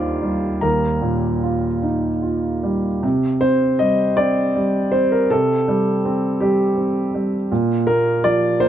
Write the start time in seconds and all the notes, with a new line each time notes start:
Already playing: D#2 G3 D#4 F4 A#4 C5 D5 A#5 C6 D6
0.22 G3
0.61 D#2 A#4 A#5
1.02 A#2
1.44 F4
1.82 D#4
2.23 F4
2.63 G3
3.03 C3
3.41 C4 C5
3.79 G3 D#5
4.17 C4 D5
4.56 G3
4.92 C4 C5
5.12 A#4
5.30 C3 A4
5.68 G3
6.05 C4
6.41 G3 G4
6.77 C4
7.14 G3
7.51 A#2
7.87 A#3 A#4
8.24 F3 D5
8.60 A#3 C5